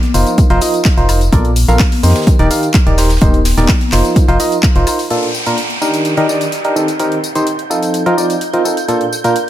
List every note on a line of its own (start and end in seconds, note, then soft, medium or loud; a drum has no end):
0.03 snare soft
0.03 closed hi-hat soft
0.03 tambourine soft
0.03 high conga medium
0.14 0.24 F1 medium
0.14 0.47 F3 medium
0.14 0.47 D#4 medium
0.14 0.47 F4 medium
0.14 0.47 A#4 medium
0.14 0.47 C5 medium
0.14 closed hi-hat medium
0.14 open hi-hat loud
0.14 tambourine medium
0.27 closed hi-hat medium
0.27 tambourine soft
0.27 tambourine medium
0.38 kick loud
0.38 closed hi-hat medium
0.38 tambourine medium
0.38 tambourine soft
0.50 0.59 F1 loud
0.50 0.59 F3 loud
0.50 0.59 D#4 medium
0.50 0.59 F4 loud
0.50 0.59 A#4 loud
0.50 0.59 C5 loud
0.50 closed hi-hat soft
0.50 tambourine soft
0.61 0.80 F3 medium
0.61 0.80 D#4 medium
0.61 0.80 F4 medium
0.61 0.80 A#4 medium
0.61 0.80 D#5 medium
0.61 closed hi-hat medium
0.61 open hi-hat loud
0.61 tambourine medium
0.74 closed hi-hat medium
0.74 tambourine medium
0.74 tambourine soft
0.85 kick loud
0.85 snare loud
0.85 clap loud
0.85 closed hi-hat medium
0.85 tambourine soft
0.97 1.29 F1 medium
0.97 1.07 F3 medium
0.97 1.07 D#4 medium
0.97 1.07 F4 medium
0.97 1.07 A#4 medium
0.97 1.07 C5 loud
0.97 closed hi-hat soft
0.97 tambourine soft
1.09 1.20 D#4 medium
1.09 1.20 F4 medium
1.09 1.20 A#4 medium
1.09 1.20 C5 medium
1.09 closed hi-hat medium
1.09 open hi-hat loud
1.09 tambourine medium
1.09 high woodblock medium
1.21 closed hi-hat medium
1.21 tambourine soft
1.21 tambourine medium
1.32 1.65 A#1 loud
1.32 1.50 A#3 medium
1.32 1.50 F4 medium
1.32 1.50 A4 medium
1.32 1.50 A#4 medium
1.32 1.50 D5 loud
1.32 kick loud
1.32 closed hi-hat medium
1.32 tambourine medium
1.32 tambourine soft
1.32 high conga medium
1.45 closed hi-hat soft
1.45 tambourine soft
1.56 closed hi-hat medium
1.56 open hi-hat loud
1.56 tambourine medium
1.68 1.78 A#1 loud
1.68 1.79 A#3 medium
1.68 1.79 F4 medium
1.68 1.79 A4 medium
1.68 1.79 A#4 medium
1.68 1.79 F5 loud
1.68 closed hi-hat medium
1.68 closed hi-hat soft
1.68 tambourine medium
1.68 tambourine soft
1.68 high conga medium
1.79 kick loud
1.79 snare loud
1.79 clap loud
1.79 closed hi-hat medium
1.79 open hi-hat medium
1.79 tambourine medium
1.79 tambourine soft
1.79 high woodblock medium
1.92 open hi-hat medium
1.92 tambourine soft
1.92 high conga medium
2.03 2.13 F2 medium
2.03 2.36 D#3 medium
2.03 2.36 D#4 medium
2.03 2.36 G4 medium
2.03 2.36 A#4 medium
2.03 2.36 C5 medium
2.03 open hi-hat loud
2.03 open hi-hat medium
2.03 tambourine medium
2.09 snare medium
2.09 open hi-hat medium
2.15 snare loud
2.15 closed hi-hat medium
2.15 open hi-hat medium
2.15 tambourine medium
2.15 tambourine soft
2.21 snare medium
2.21 open hi-hat medium
2.27 kick loud
2.27 closed hi-hat medium
2.27 tambourine soft
2.27 tambourine medium
2.39 2.48 D#1 medium
2.39 2.48 D#3 loud
2.39 2.48 D#4 loud
2.39 2.48 G4 loud
2.39 2.48 A#4 loud
2.39 2.48 D5 loud
2.39 closed hi-hat soft
2.39 tambourine soft
2.51 2.69 D#3 medium
2.51 2.69 D#4 medium
2.51 2.69 G4 medium
2.51 2.69 A#4 medium
2.51 2.69 F5 medium
2.51 closed hi-hat medium
2.51 open hi-hat loud
2.51 tambourine medium
2.62 closed hi-hat medium
2.62 tambourine medium
2.62 tambourine soft
2.74 kick loud
2.74 snare loud
2.74 clap loud
2.74 closed hi-hat medium
2.74 tambourine soft
2.87 3.18 D#1 medium
2.87 2.96 D#3 medium
2.87 2.96 D#4 medium
2.87 2.96 G4 medium
2.87 2.96 A#4 medium
2.87 2.96 D5 loud
2.87 closed hi-hat soft
2.87 tambourine soft
2.98 3.09 D#3 medium
2.98 3.09 D#4 medium
2.98 3.09 G4 medium
2.98 3.09 A#4 medium
2.98 3.09 C5 medium
2.98 snare medium
2.98 open hi-hat medium
2.98 open hi-hat loud
2.98 tambourine medium
3.04 snare medium
3.04 open hi-hat medium
3.09 snare medium
3.09 closed hi-hat medium
3.09 open hi-hat medium
3.09 tambourine medium
3.09 tambourine soft
3.15 snare loud
3.15 open hi-hat medium
3.21 3.54 D#1 loud
3.21 3.39 D#3 medium
3.21 3.39 D#4 medium
3.21 3.39 G4 medium
3.21 3.39 A#4 medium
3.21 3.39 C5 loud
3.21 kick loud
3.21 closed hi-hat medium
3.21 tambourine medium
3.21 tambourine soft
3.21 high conga medium
3.33 closed hi-hat soft
3.33 tambourine soft
3.45 snare loud
3.45 open hi-hat medium
3.45 open hi-hat loud
3.45 tambourine medium
3.57 3.67 D#1 loud
3.57 3.68 D#3 medium
3.57 3.68 D#4 medium
3.57 3.68 G4 medium
3.57 3.68 A#4 medium
3.57 3.68 D5 loud
3.57 snare loud
3.57 closed hi-hat medium
3.57 open hi-hat medium
3.57 tambourine medium
3.57 tambourine soft
3.57 high conga medium
3.69 kick loud
3.69 snare loud
3.69 clap loud
3.69 closed hi-hat medium
3.69 tambourine medium
3.69 tambourine soft
3.69 high woodblock medium
3.81 snare soft
3.81 closed hi-hat soft
3.81 tambourine soft
3.81 high conga medium
3.92 4.02 F1 medium
3.92 4.25 F3 medium
3.92 4.25 D#4 medium
3.92 4.25 F4 medium
3.92 4.25 A#4 medium
3.92 4.25 C5 medium
3.92 snare medium
3.92 clap medium
3.92 open hi-hat medium
3.92 open hi-hat loud
3.92 tambourine medium
4.05 closed hi-hat medium
4.05 tambourine medium
4.05 tambourine soft
4.16 kick loud
4.16 closed hi-hat medium
4.16 tambourine medium
4.16 tambourine soft
4.28 4.38 F1 medium
4.28 4.37 F3 loud
4.28 4.37 D#4 loud
4.28 4.37 F4 loud
4.28 4.37 A#4 medium
4.28 4.37 C5 loud
4.28 closed hi-hat soft
4.28 tambourine soft
4.39 4.58 F3 medium
4.39 4.58 D#4 medium
4.39 4.58 F4 medium
4.39 4.58 A#4 medium
4.39 4.58 D#5 medium
4.39 closed hi-hat medium
4.39 open hi-hat loud
4.39 tambourine medium
4.51 closed hi-hat medium
4.51 tambourine medium
4.51 tambourine soft
4.63 kick loud
4.63 clap loud
4.63 closed hi-hat medium
4.63 tambourine medium
4.63 tambourine soft
4.75 4.85 F1 loud
4.75 4.85 F3 medium
4.75 4.85 D#4 medium
4.75 4.85 F4 medium
4.75 4.85 A#4 medium
4.75 4.85 C5 loud
4.75 closed hi-hat soft
4.75 tambourine soft
4.87 4.98 D#4 medium
4.87 4.98 F4 medium
4.87 4.98 A#4 medium
4.87 4.98 C5 medium
4.87 closed hi-hat medium
4.87 open hi-hat loud
4.87 tambourine medium
4.87 high woodblock medium
4.99 closed hi-hat soft
4.99 open hi-hat medium
4.99 tambourine medium
4.99 tambourine soft
5.10 5.28 A#2 medium
5.10 5.28 A#3 medium
5.10 5.28 D4 medium
5.10 5.28 F4 medium
5.10 5.28 A4 medium
5.10 9.50 G6 medium
5.10 closed hi-hat medium
5.10 tambourine soft
5.10 downlifter medium
5.23 closed hi-hat soft
5.35 tambourine medium
5.46 5.57 A#2 medium
5.46 5.57 A#3 medium
5.46 5.57 D4 medium
5.46 5.57 F4 medium
5.46 5.57 A#4 loud
5.46 closed hi-hat medium
5.46 tambourine soft
5.58 closed hi-hat medium
5.58 tambourine soft
5.70 closed hi-hat soft
5.81 6.14 D#3 medium
5.81 6.14 D4 medium
5.81 6.14 D#4 medium
5.81 6.14 G4 medium
5.81 6.14 A#4 medium
5.81 tambourine medium
5.94 closed hi-hat medium
5.94 tambourine soft
6.05 closed hi-hat medium
6.05 tambourine soft
6.17 6.26 D#3 loud
6.17 6.26 D4 medium
6.17 6.26 D#4 medium
6.17 6.26 G4 medium
6.17 6.26 A#4 loud
6.17 closed hi-hat soft
6.29 6.47 D#3 medium
6.29 6.47 D4 medium
6.29 6.47 D#4 medium
6.29 6.47 G4 medium
6.29 6.47 D5 medium
6.29 tambourine medium
6.41 closed hi-hat medium
6.41 tambourine soft
6.52 closed hi-hat medium
6.52 tambourine soft
6.65 6.74 D4 medium
6.65 6.74 D#4 medium
6.65 6.74 G4 medium
6.65 6.74 A#4 medium
6.65 closed hi-hat soft
6.76 6.87 D#3 medium
6.76 6.87 C4 medium
6.76 6.87 D#4 medium
6.76 6.87 G4 medium
6.76 6.87 A4 medium
6.76 tambourine medium
6.88 closed hi-hat medium
6.88 tambourine soft
7.00 7.17 D#3 medium
7.00 7.17 C4 medium
7.00 7.17 D#4 medium
7.00 7.17 G4 medium
7.00 7.17 A#4 medium
7.00 closed hi-hat medium
7.00 tambourine soft
7.12 closed hi-hat soft
7.24 tambourine medium
7.35 7.46 D#3 medium
7.35 7.46 C4 medium
7.35 7.46 D#4 medium
7.35 7.46 G4 medium
7.35 7.46 C5 medium
7.35 closed hi-hat soft
7.35 tambourine soft
7.47 closed hi-hat medium
7.47 tambourine soft
7.59 closed hi-hat soft
7.70 8.03 F3 medium
7.70 8.03 C4 medium
7.70 8.03 D#4 medium
7.70 8.03 F4 medium
7.70 8.03 A4 medium
7.70 tambourine medium
7.83 closed hi-hat soft
7.83 tambourine soft
7.94 closed hi-hat medium
7.94 tambourine soft
8.06 8.15 F3 loud
8.06 8.15 C4 medium
8.06 8.15 D#4 medium
8.06 8.15 F4 medium
8.06 8.15 A#4 loud
8.06 closed hi-hat soft
8.17 8.35 F3 medium
8.17 8.35 C4 medium
8.17 8.35 D#4 medium
8.17 8.35 F4 medium
8.17 8.35 D5 medium
8.17 tambourine medium
8.30 closed hi-hat soft
8.30 tambourine soft
8.41 closed hi-hat medium
8.41 tambourine soft
8.53 8.63 F3 medium
8.53 8.63 C4 medium
8.53 8.63 D#4 medium
8.53 8.63 F4 medium
8.53 8.63 A#4 medium
8.53 closed hi-hat soft
8.65 8.76 C4 medium
8.65 8.76 D#4 medium
8.65 8.76 F4 medium
8.65 8.76 A4 medium
8.65 tambourine medium
8.77 closed hi-hat soft
8.77 tambourine soft
8.88 9.06 A#2 medium
8.88 9.06 A#3 medium
8.88 9.06 D4 medium
8.88 9.06 F4 medium
8.88 9.06 A4 medium
8.88 closed hi-hat medium
8.88 tambourine soft
9.01 closed hi-hat soft
9.12 tambourine medium
9.24 9.35 A#2 medium
9.24 9.35 A#3 medium
9.24 9.35 D4 medium
9.24 9.35 F4 medium
9.24 9.35 A#4 loud
9.24 closed hi-hat soft
9.24 tambourine soft
9.36 closed hi-hat medium
9.36 tambourine soft